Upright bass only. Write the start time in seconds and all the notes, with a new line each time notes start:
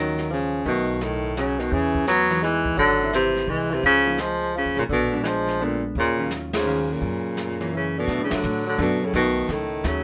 Already playing: D#2
0.66 B1
1.72 E2
2.78 G#1
3.47 C2
3.83 C#2
4.65 D#2
4.77 B1
4.89 A#1
5.95 D#2
7.02 F#2
8.08 B2
8.18 A2
8.32 F#2
8.44 A2
8.78 F#2
9.13 B1
9.48 C#2
9.84 D#2